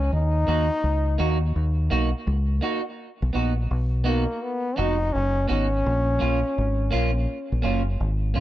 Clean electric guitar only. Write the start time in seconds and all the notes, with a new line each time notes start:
0.47 A#3 D#4 F#4
1.18 A#3 D#4 F#4
1.90 A#3 D#4 F#4
2.61 A#3 D#4 F#4
3.33 B3 D#4 F#4
4.04 B3 D#4 F#4
4.76 B3 D#4 F#4
5.48 B3 D#4 F#4
6.19 A#3 C#4 F4
6.91 A#3 C#4 F4
7.62 A#3 C#4 F4
8.34 A#3 C#4 F4